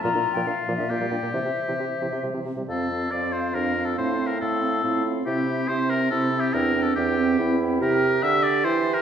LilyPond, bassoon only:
\new Staff \with { instrumentName = "Bassoon" } { \clef bass \time 3/4 \key f \major \tempo 4 = 140 bes,16 bes,16 r16 bes,16 bes,16 r16 bes,16 bes,16 bes,16 bes,16 bes,16 bes,16 | c16 c16 r16 c16 c16 r16 c16 c16 c16 c16 c16 c16 | f,4 f,4 f,4 | a,4 a,4 a,4 |
c4 c4 c4 | e,4 e,4 e,4 | c4 d4 e4 | }